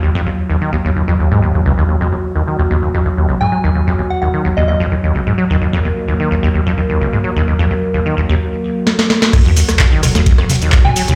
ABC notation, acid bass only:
X:1
M:4/4
L:1/16
Q:1/4=129
K:Ebm
V:1 name="Acid bass" clef=bass
E,, F,, E,, z E,, E, E,, E,, E,, F,, E,, A,, E,, E,, D,, E,, | E,, F,, E,, z E,, E, E,, E,, E,, F,, E,, E,, D,, A,, G, E,, | E,, F,, E,, z E,, E, E,, E,, E,, F,, E,, E,, D,, A,, G, E,, | E,, F,, E,, z E,, E, E,, E,, E,, F,, E,, E,, D,, A,, G, E,, |
E,, F,, E,, z E,, E, E,, E,, z8 | E,, F,, E,, z E,, E, E,, E,, E,, F,, E,, E,, z A,, G, E,, |]